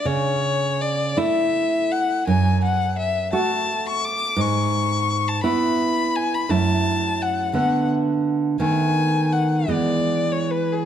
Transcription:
<<
  \new Staff \with { instrumentName = "Violin" } { \time 6/8 \key a \major \tempo 4. = 56 cis''4 d''8 e''4 fis''8 | gis''8 fis''8 e''8 a''8. cis'''16 d'''8 | cis'''4~ cis'''16 a''16 b''4 gis''16 b''16 | a''4 fis''8 fis''8 r4 |
gis''4 fis''8 d''8. cis''16 b'16 gis'16 | }
  \new Staff \with { instrumentName = "Nylon-string guitar" } { \time 6/8 \key a \major cis4. <a e'>4. | fis,4. <a fis'>4. | gis,4. <b e'>4. | <fis, a e'>4. <d a b>4. |
<dis a b>4. <e gis b>4. | }
>>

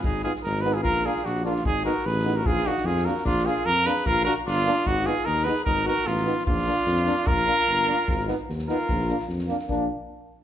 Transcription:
<<
  \new Staff \with { instrumentName = "Trumpet" } { \time 2/4 \tempo 4 = 149 aes'8 aes'8 bes'8 ces''16 aes'16 | bes'8 aes'8 ges'8 f'8 | aes'8 bes'8 ces''8. bes'16 | aes'8 ges'8 aes'8 bes'8 |
f'8 aes'8 bes'8 ces''8 | bes'8 bes'8 f'4 | ges'8 aes'8 bes'8 ces''8 | bes'8 bes'8 f'4 |
f'2 | bes'2~ | bes'8. r8. bes'8~ | bes'4 r4 |
r2 | }
  \new Staff \with { instrumentName = "Alto saxophone" } { \time 2/4 ees'8 f'8 ees'8 aes'16 f'16 | f'8 f'8 d'8 d'8 | ees'8 ges'8 aes'8. ges'16 | f'8 ees'8 f'8 ges'8 |
d'8 f'8 f'8 aes'8 | f'8 ges'8 d'4 | ees'8 f'8 ees'8 aes'8 | ees'8 ges'8 ces'4 |
d'2 | f'2~ | f'8. r8. f'8~ | f'4 r4 |
r2 | }
  \new Staff \with { instrumentName = "Euphonium" } { \time 2/4 r8 ees'8 r8 ees'8 | r8 d'8 r8 d'8 | r8 ees'8 r8 ees'8 | r8 d'8 r8 d'8 |
r8 d'8 r8 d'8 | r8 d'8 r8 d'8 | r8 ees'8 r8 ees'8 | r8 ees'8 r8 ees'8 |
r8 d'8 r8 d'8 | r8 d'8 r8 d'8 | r8 ees'8 r8 ees'8 | r8 d'8 r8 d'8 |
d'8 r4. | }
  \new Staff \with { instrumentName = "Trombone" } { \time 2/4 r8 ces'8 r8 ces'8 | r8 bes8 r8 bes8 | r8 ces'8 r8 ces'8 | r8 bes8 r8 bes8 |
r8 bes8 r8 bes8 | r8 bes8 r8 bes8 | r8 ces'8 r8 ces'8 | r8 ces'8 r8 ces'8 |
r8 bes8 r8 bes8 | r8 bes8 r8 bes8 | r8 ces'8 r8 ces'8 | r8 bes8 r8 bes8 |
bes8 r4. | }
  \new Staff \with { instrumentName = "Tuba" } { \clef bass \time 2/4 aes,,4 aes,,4 | bes,,4 bes,,4 | aes,,4 a,,4 | bes,,4 f,4 |
bes,,4 f,4 | bes,,4 g,,4 | aes,,4 ees,4 | aes,,4 a,,4 |
bes,,4 f,4 | bes,,4 g,,4 | aes,,4 ees,4 | bes,,4 f,4 |
bes,,8 r4. | }
  \new DrumStaff \with { instrumentName = "Drums" } \drummode { \time 2/4 bd16 sn16 sn16 sn16 sn16 sn16 sn8 | bd16 sn16 sn16 sn16 sn16 sn16 sn16 sn16 | bd16 sn16 sn16 sn16 sn16 sn16 sn8 | bd16 sn16 sn16 sn16 sn16 sn16 sn16 sn16 |
bd16 sn16 sn8 sn16 sn16 sn8 | bd16 sn16 sn8 sn16 sn16 sn8 | bd16 sn16 sn8 sn16 sn16 sn8 | bd16 sn16 sn16 sn16 sn16 sn16 sn16 sn16 |
bd16 sn16 sn8 sn16 sn16 sn8 | bd16 sn16 sn8 sn16 sn16 sn8 | bd16 sn16 sn8 sn16 sn16 sn8 | bd16 sn16 sn16 sn16 sn16 sn16 sn16 sn16 |
bd4 r4 | }
>>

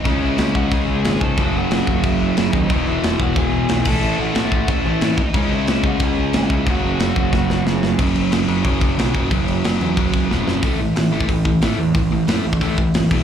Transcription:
<<
  \new Staff \with { instrumentName = "Lead electric guitar" } { \time 4/4 \key a \lydian \tempo 4 = 182 <dis' dis''>8 <e' e''>4 <fis' fis''>8 <gis' gis''>4. <a' a''>8~ | <a' a''>8 <fis' fis''>4. <e' e''>4 <e' e''>8 <dis' dis''>8~ | <dis' dis''>8 <e' e''>4 <fis' fis''>8 <gis' gis''>4. <a' a''>8~ | <a' a''>8 <fis' fis''>4. <e' e''>4 <e' e''>8 <dis' dis''>8~ |
<dis' dis''>8 <e' e''>4 <fis' fis''>8 <gis' gis''>4 <e' e''>4 | <fis' fis''>2. r4 | r1 | r1 |
r1 | r1 | }
  \new Staff \with { instrumentName = "Overdriven electric guitar" } { \clef bass \time 4/4 \key a \lydian <cis gis cis'>4. <cis gis cis'>4. <cis gis cis'>4 | <fis, cis fis>4. <fis, cis fis>4. <fis, cis fis>4 | <e, b, e>4. <e, b, e>4. <e, b, e>8 <a, e a>8~ | <a, e a>4 <a, e a>4. <a, e a>4 r8 |
<cis gis cis'>4. <cis gis cis'>4. <cis gis cis'>4 | <fis, cis fis>4. <fis, cis fis>4. <fis, cis fis>4 | r1 | r1 |
r1 | r1 | }
  \new Staff \with { instrumentName = "Distorted electric guitar" } { \clef bass \time 4/4 \key a \lydian <cis gis cis'>1 | <fis, cis fis>1 | <e, b, e>2.~ <e, b, e>8 <a, e a>8~ | <a, e a>2.~ <a, e a>8 r8 |
<cis gis cis'>1 | <fis, cis fis>1 | <fis, cis fis>4 <fis, cis fis>8 <fis, cis fis>8 <fis, cis fis>4 <fis, cis fis>8 <fis, cis fis>8 | <fis, cis fis>4 <fis, cis fis>8 <fis, cis fis>8 <fis, cis fis>4 <fis, cis fis>8 <fis, cis fis>8 |
<a, e a>8 <a, e>8 <a, e>8 <a, e a>8 <a, e>8 <a, e>8 <a, e a>8 <a, e>8 | <a, e>8 <a, e>8 <a, e a>8 <a, e>8 <a, e a>8 <a, e>8 <a, e>8 <e, b, e>8 | }
  \new Staff \with { instrumentName = "Overdriven electric guitar" } { \clef bass \time 4/4 \key a \lydian <cis gis cis'>1 | <fis, cis fis>1 | <e, b, e>2.~ <e, b, e>8 <a, e a>8~ | <a, e a>2.~ <a, e a>8 r8 |
<cis gis cis'>1 | <fis, cis fis>1 | <fis, cis fis>4 <fis, cis fis>8 <fis, cis fis>8 <fis, cis fis>4 <fis, cis fis>8 <fis, cis fis>8 | <fis, cis fis>4 <fis, cis fis>8 <fis, cis fis>8 <fis, cis fis>4 <fis, cis fis>8 <fis, cis fis>8 |
<a, e a>8 <a, e>8 <a, e>8 <a, e a>8 <a, e>8 <a, e>8 <a, e a>8 <a, e>8 | <a, e>8 <a, e>8 <a, e a>8 <a, e>8 <a, e a>8 <a, e>8 <a, e>8 <e, b, e>8 | }
  \new Staff \with { instrumentName = "Picked electric bass" } { \clef bass \time 4/4 \key a \lydian cis,8 cis,8 cis,8 cis,8 cis,8 cis,8 gis,,8 gis,8 | fis,,8 fis,,8 fis,,8 fis,,8 fis,,8 fis,,8 fis,,8 dis,8 | e,,8 e,,8 e,,8 e,,8 e,,8 e,,8 b,,8 a,,8 | a,,8 a,,8 a,,8 a,,8 a,,8 a,,8 a,,8 a,,8 |
cis,8 cis,8 cis,8 cis,8 cis,8 cis,8 gis,,8 cis,8 | fis,,8 fis,,8 fis,,8 fis,,8 fis,,8 fis,,8 fis,,8 fis,,8 | fis,,8 fis,,8 fis,,8 fis,,8 fis,,8 fis,,8 b,,8 fis,,8 | fis,,8 fis,,8 fis,,8 e,8 fis,,8 cis,8 e,,8 fis,,8 |
a,,8 a,,8 a,,4 a,,4 a,,8 e,8 | a,,8 a,,8 fis,8 a,,8 a,,4 fis,,8 e,,8 | }
  \new DrumStaff \with { instrumentName = "Drums" } \drummode { \time 4/4 <cymc bd>4 <cymc sn>8 bd8 <cymc bd>4 <cymc sn>8 bd8 | <cymc bd>4 <cymc sn>8 bd8 <cymc bd>4 <cymc sn>8 bd8 | <cymc bd>4 <cymc sn>8 bd8 <cymc bd>4 <cymc sn>8 <cymc bd>8 | cymc4 <cymc sn>8 bd8 <cymc bd>4 <cymc sn>8 bd8 |
<cymc bd>4 <cymc sn>8 bd8 <cymc bd>4 <cymc sn>8 bd8 | <cymc bd>4 <cymc sn>8 bd8 <bd sn>8 sn8 sn8 sn8 | <cymc bd>8 cymc8 <cymc sn>8 cymc8 <cymc bd>8 <cymc bd>8 <cymc sn>8 <cymc bd>8 | <cymc bd>8 cymc8 <cymc sn>8 cymc8 <cymc bd>8 <cymc bd>8 sn8 sn8 |
<hho bd>4 <hho sn>8. bd16 <hho bd>8 bd8 <hho sn>4 | <hho bd>4 <hho sn>8. bd16 <hho bd>8 bd8 <hho sn>8 <cymc bd>8 | }
>>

